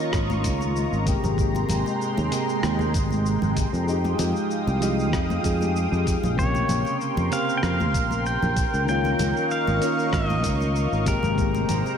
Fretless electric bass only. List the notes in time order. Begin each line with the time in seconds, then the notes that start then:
0.13 G#1
0.44 C#2
0.92 G#1
1.24 G#1
1.70 G#1
2.18 D#2
2.63 D#2
2.94 G#1
3.42 G#1
3.73 F2
4.19 F2
4.67 C2
5.13 F2
5.44 F2
5.92 F2
6.23 A#1
6.69 A#1
7.17 F2
7.63 F2
7.94 A#1
8.42 A#1
8.74 C#2
9.19 C#2
9.67 G#1
10.13 G#1
10.44 C#2
10.92 G#1
11.24 G#1
11.69 G#1